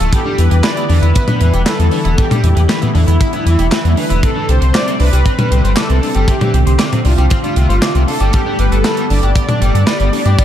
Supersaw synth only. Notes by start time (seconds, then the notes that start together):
Already playing: A4
0.13 G4
0.39 B4
0.64 D5
0.90 B4
1.67 A4
2.18 G4
2.96 E4
3.98 B4
4.23 A4
4.49 C5
4.74 D5
5.00 B4
5.77 A4
6.28 G4
7.05 F4
8.07 A4
8.33 G4
8.59 B4
8.71 A4
9.10 D5